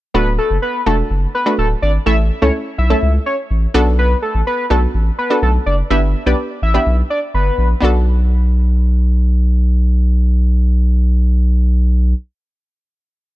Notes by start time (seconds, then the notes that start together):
0.14 D1 A3 D4 F#4 A4 B4
0.38 A4
0.51 F#1
0.62 B4
0.86 E1 A3 D4 F#4 A4
1.10 F#1
1.35 B4
1.46 A3 D4 F#4 B4
1.58 D1 A4
1.82 G#1 D5
2.06 A1 A3 C#4 E4 A4 E5
2.42 C#2 A3 C#4 E4 A4 C#5
2.78 B1 E5
2.90 A3 C#4 E4 A4
3.03 C#2
3.26 C#5
3.51 A1
3.74 B1 B3 D4 F#4 A4
3.99 B4
4.22 A4
4.35 A1
4.47 B4
4.70 B1 B3 D4 F#4 A4
4.94 A1
5.18 B4
5.30 B3 D4 F#4 A4
5.42 B1 A4
5.66 F#1 D5
5.90 G1 B3 D4 G4 B4 E5
6.26 B1 B3 D4 G4 B4 D5
6.62 A1 E5
6.74 B3 D4 G4 B4
6.86 B1
7.10 D5
7.34 G1 B4
7.58 A#1
7.80 B1 B3 D4 F#4
7.85 A4